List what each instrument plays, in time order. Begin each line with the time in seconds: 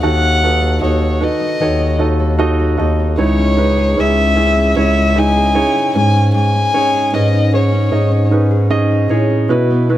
Already playing: grand piano D#4 F#4 A4 B4 D#5 F#5, nylon-string guitar D#4 F#4 A4
0.02 bass clarinet D#2, grand piano D#3 D#4 F#4 A4 F#5, nylon-string guitar D#3, violin F#5
0.22 nylon-string guitar D#4
0.42 grand piano D#4 F#4 A4 B4, nylon-string guitar F#4
0.61 nylon-string guitar A4
0.81 bass clarinet D#2, grand piano D#4 F#4 A4 D#5, nylon-string guitar D#4, violin C#5
1.01 nylon-string guitar F#4
1.20 grand piano D#4 F#4 A4 B4, nylon-string guitar A4
1.24 violin D#5
1.41 nylon-string guitar D#4
1.60 bass clarinet D#2, nylon-string guitar D#3, grand piano D#4 F#4 A4 C#5
1.79 nylon-string guitar D#4
1.99 grand piano D#4 F#4 A4 D#5, nylon-string guitar F#4
2.20 nylon-string guitar A4
2.38 grand piano D#4 F#4 A4 D#5, nylon-string guitar D#4
2.60 nylon-string guitar F#4
2.77 bass clarinet D#2, grand piano D#4 F#4 A4 D#5, nylon-string guitar A4
3.00 nylon-string guitar D#4
3.18 bass clarinet C#2, grand piano C#3 D#4 E4 G#4 C#5, nylon-string guitar C#3, violin C#5
3.39 nylon-string guitar C#4
3.57 grand piano D#4 E4 G#4 B4, nylon-string guitar D#4
3.78 nylon-string guitar G#4
3.97 bass clarinet C#2, grand piano C#4 E4 G#4 C#5, nylon-string guitar C#4, violin E5
4.36 grand piano C#4 E4 G#4 E5, nylon-string guitar G#4
4.57 nylon-string guitar C#4
4.76 bass clarinet C#2, nylon-string guitar C#3, grand piano C#4 E4 G#4 C#5, violin E5
4.97 nylon-string guitar C#4
5.15 grand piano D#4 E4 G#4 D#5, nylon-string guitar D#4, violin G#5
5.36 nylon-string guitar G#4
5.55 nylon-string guitar C#4, grand piano D#4 E4 G#4 C#5
5.76 nylon-string guitar D#4
5.95 bass clarinet G#2, nylon-string guitar G#2, grand piano G#2 C#4 D#4 G#4 C#5, violin G#5
6.15 nylon-string guitar C#4
6.34 nylon-string guitar G#2, violin G#5
6.55 nylon-string guitar C#4
6.74 grand piano C#4 D#4 G#4 C#5, nylon-string guitar D#4
6.94 nylon-string guitar G#4
7.13 bass clarinet G#2, grand piano C#4 D#4 G#4 B4, nylon-string guitar C#4, violin D#5
7.34 nylon-string guitar D#4
7.53 grand piano C#4 D#4 G#4 C#5, nylon-string guitar G#4, violin C#5
7.72 nylon-string guitar C#4
7.91 bass clarinet G#2, grand piano C#4 D#4 G#4 D#5
8.12 nylon-string guitar C#4
8.31 grand piano C#4 D#4 G#4 B4, nylon-string guitar D#4
8.51 nylon-string guitar G#4
8.70 grand piano C#4 D#4 G#4 D#5
8.91 nylon-string guitar D#4
9.09 bass clarinet A2, grand piano C#4 D#4 G#4 C#5, nylon-string guitar G#4
9.30 nylon-string guitar C#4
9.49 bass clarinet B2, grand piano B2 B3 E4 F#4 B4, nylon-string guitar B2
9.70 nylon-string guitar B3
9.90 grand piano B3 E4 F#4 B4, nylon-string guitar E4